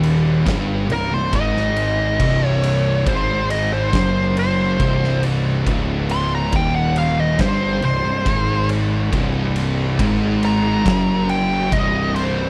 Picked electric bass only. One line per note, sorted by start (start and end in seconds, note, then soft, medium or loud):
0.00 0.43 D#1 medium
0.46 0.87 G1 loud
0.90 1.11 C1 medium
1.13 1.33 C1 medium
1.33 2.16 G#1 medium
2.20 3.03 C1 medium
3.06 3.89 G#1 medium
3.93 4.76 F#1 medium
4.80 5.63 C1 medium
5.67 6.49 C#1 medium
6.53 7.36 D#1 loud
7.39 7.80 G1 loud
7.83 8.03 C1 medium
8.05 8.25 C1 medium
8.26 9.09 G#1 medium
9.13 9.95 C1 medium
9.99 10.82 G#1 loud
10.86 11.68 F#1 loud
11.72 12.50 C1 medium